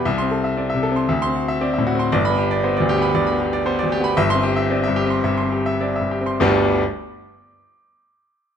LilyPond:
<<
  \new Staff \with { instrumentName = "Grand piano" } { \time 4/4 \key g \major \tempo 4 = 114 << { r16 c'''8 r4. c'''8 r4 r16 | r16 b''8 r2. r16 | r16 c'''8 r2. r16 | <g,, d, g b d' g'>8 r2. r8 | } \\ { e''8 a'16 e''16 d''16 e''16 a'16 c'''16 e''8 fis'16 e''16 d''16 e''16 fis'16 c'''16 | d''8 g'16 d''16 c''16 d''16 g'16 b''16 d''16 b''16 g'16 d''16 c''16 d''16 g'16 b''16 | e''8 g'16 e''16 d''16 e''16 g'16 c'''16 e''16 c'''16 g'16 e''16 d''16 e''16 g'16 c'''16 | r1 | } >> }
  \new Staff \with { instrumentName = "Grand piano" } { \time 4/4 \key g \major \tuplet 3/2 { c,8 c'4 c'8 c8 c'8 d,8 c'4 c'8 a,8 c'8 } | \tuplet 3/2 { g,,8 b4 b8 d,8 b8 d,8 b4 b8 d,8 b8 } | \tuplet 3/2 { g,,8 c'4 c'8 g,8 c'8 g,8 c'4 c'8 g,8 c'8 } | r1 | }
>>